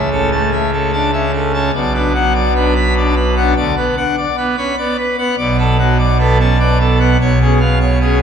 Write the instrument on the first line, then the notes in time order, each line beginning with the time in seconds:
pipe organ
Already playing: C#2 C#3
0.11 C#4 A4
0.32 A3 A5
0.52 E5
0.73 C#4 A4
0.93 D4 A5
1.13 C#4 E5
1.34 A4
1.54 C#4 A5
1.75 B1 B2 D5
1.94 D4 B4
2.15 F#3 F#5
2.35 D5
2.55 D4 B4
2.76 B5
2.96 D4 D5
3.16 B4
3.37 D4 F#5
3.56 D2 D3 D5
3.77 B3 B4
3.97 D4 F#5
4.17 D5
4.37 B3 B4
4.57 C#4 B5
4.78 B3 D5
4.97 B4
5.18 B3 F#5
5.38 B1 B2 D5
5.58 B3 A4
5.79 F#3 F#5
5.99 D5
6.19 B3 A4
6.40 C#4 A5
6.59 B3 D5
6.80 A4
7.00 B3 F#5
7.20 B1 B2 C#5
7.41 C#4 G#4
7.60 B3 F5
7.80 C#5
8.00 C#4 G#4